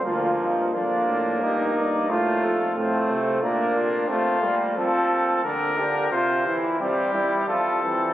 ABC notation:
X:1
M:3/4
L:1/8
Q:1/4=89
K:Bb
V:1 name="Cornet"
F E F2 G d | c A F A B F | F2 A2 B2 | c z G2 A2 |]
V:2 name="Flugelhorn"
B,2 D2 E2 | F2 C2 D2 | C B, C2 D G | F =E C E F C |]
V:3 name="Trombone" clef=bass
F,2 B,4 | A,2 A,2 B,2 | A, G, F,2 D, D, | C, =E, G, G, F, E, |]
V:4 name="Bass trombone" clef=bass
D,, G,, F,, A,, G,, G,, | A,, F,, A,, C, B,,2 | z6 | z6 |]